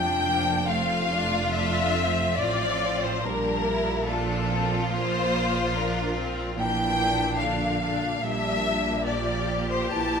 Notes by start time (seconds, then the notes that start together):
Already playing: F1 F2 F3 A3 D4 G5
0.27 A#3
0.68 A3 C4 F4 F5
1.11 D4
1.52 A3 D4 E5
1.95 C4
2.38 A1 A2 F3 C4 F4 D5
3.03 C5
3.23 A#1 A#2 G3 A#3 D4 A#4
3.64 E4
4.07 F3 D4 F4 A4
4.50 C4
4.91 A#3 C5
5.75 D4 A#4
6.16 C4
6.57 A#1 A#2 E3 A#3 D4 G5
7.39 D3 D4 F5
7.82 D4
8.22 A#1 A#2 G3 A#3 D4 E5
9.04 F3 G4 D5
9.71 C5
9.92 A#1 A#2 E3 A5